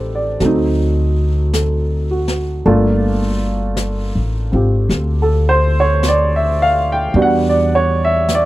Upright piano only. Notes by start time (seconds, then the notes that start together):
Already playing: G3 C4 D#4 G4 A4 B4 C5
0.15 D5
0.40 F#3 A3 C4
0.45 D#4
1.54 A4
2.11 F#4
2.66 A3 A#3 D4 F4
4.52 C4 F4 G4
5.22 A4
5.49 C5
5.80 C#5
6.08 D5
6.36 E5
6.62 F5
6.92 G5
7.15 G3 B3 D4 F#4
7.22 F#5
7.49 D5
7.75 C#5
8.05 E5
8.35 D5